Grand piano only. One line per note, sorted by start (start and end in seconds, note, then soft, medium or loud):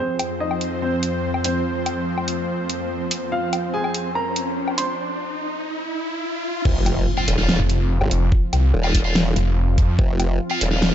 0.00 0.33 C4 medium
0.00 0.32 C5 medium
0.40 0.74 D#4 medium
0.40 0.74 D#5 medium
0.82 1.36 C4 medium
0.82 1.36 C5 medium
1.45 1.99 C4 medium
1.45 1.99 C5 medium
3.32 3.66 F4 medium
3.32 3.66 F5 loud
3.74 4.08 G#4 medium
3.74 4.07 G#5 medium
4.15 4.70 A#4 medium
4.15 4.70 A#5 medium
4.78 5.32 C5 medium
4.78 5.32 C6 medium